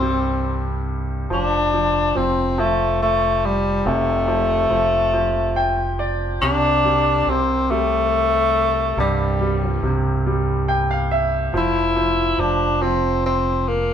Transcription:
Already playing: C2 G2 C3 G3 C4
0.02 G3
1.30 F1 F3 D4
1.73 F3
2.15 F1 F3 C4
2.58 F3 A3
3.02 A3
3.45 G3
3.85 F1 C3 A3
4.28 F3
4.70 F1 F3
5.13 F3
5.56 G5
5.99 D5
6.42 C2 C3 D4
6.85 G3
7.27 C2 C3 C4
7.71 G3 A3
8.97 C2 G2 G3
9.40 G3
9.82 C2 C3
10.26 G3
10.68 G5
10.91 F5
11.11 E5
11.54 F1 F3
11.58 E4
11.96 F3
12.38 F1 F3 D4
12.81 F3 C4
13.26 C4
13.68 A#3

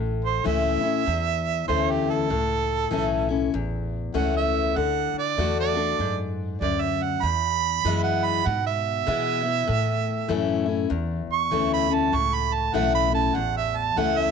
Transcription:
Already playing: A1 A2
0.25 C5
0.44 C#2 E3 A3 C#4 E4 E5
0.81 C#4 E4, muted upright bass stroke
1.06 E2
1.68 D2 E3 A3 C#4 E4 C5
1.90 G4
2.10 A4
2.30 C#2 A2
2.91 B1 E3 A3 C#4 E4
3.29 C#4 E4
3.54 A1 E2
4.14 C#2 E3 A3 C#4 E4 F#5
4.37 E5
4.76 D2 D3 F#5
5.13 muted upright bass stroke
5.18 D5
5.38 E2 D3 A3 D4 F#4
5.60 D5
5.75 D4 F#4
5.99 F#2 G#2
6.61 D2 F#2 D5
6.81 E5
7.03 F#5
7.23 E2 B5
7.85 F#2 E3 G#3 B3 E4
8.03 F#5
8.25 B5
8.46 G#2 B2 F#5
8.66 E5
9.06 B2 E3 G#3 B3 E4
9.43 B3 E4
9.67 A2
10.28 F#2 E3 A3 C#4 E4
10.66 C#4 E4
10.90 E2
11.27 muted upright bass stroke
11.33 C#6
11.51 D2 E3 A3 C#4 E4
11.73 B5
11.88 C#4 E4
11.94 A5
12.12 C#2 A2 C#6
12.34 B5
12.54 A5
12.73 B1 E3 A3 C#4 E4 F#5
12.95 B5
13.10 C#4 E4
13.14 A5
13.35 A1 E2 F#5
13.57 E5
13.77 A5
13.96 C#2 E3 A3 C#4 E4 F#5
14.18 E5

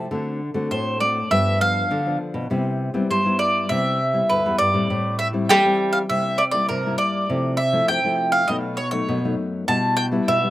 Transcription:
0.11 D3 A3 C4 F#4
0.54 D3 A3 C4 F#4
0.71 A2 C5
1.00 A3 C4 F#4 D5
1.31 G2 F3 B3 D4 E5
1.60 F3 B3 D4 F5
1.91 D3
2.06 F3 B3 D4
2.34 B2
2.50 C3 G3 B3 E4
2.94 G3 B3 C4 E4
3.10 G2 G3 C5
3.25 G3 B3 E4
3.39 D5
3.69 C3 G3 B3 E4 E5
4.13 G3 B3 E4
4.29 D2 G2 B4
4.45 E2 G3 B3 E4
4.58 G2 D5
4.74 A2 G3 C4 E4
4.90 A2
5.19 E5
5.33 G3 C4 E4
5.49 E3 G3 G5
5.65 G3 C4 E4
5.93 F5
6.09 C3 G3 A#3 E4 E5
6.38 D5
6.52 G3 A#3 E4 D5
6.69 G2 C3 A#4
6.86 G3 A#3 E4
6.98 D5
7.30 C3 F3 A3 E4
7.57 E5
7.73 F3 A3 E4
7.88 C3 G5
8.04 F3 A3 E4
8.32 F5
8.48 B2 F#3 A3 D#4 D#5
8.77 C#5
8.91 F#3 A3 D#4 C#5
9.08 F#2 B2
9.24 F#3 A3 D#4
9.68 B2 G3 B3 E4 A5
9.97 G5
10.11 G3 B3 E4
10.28 B2 E5
10.43 G3 B3 E4

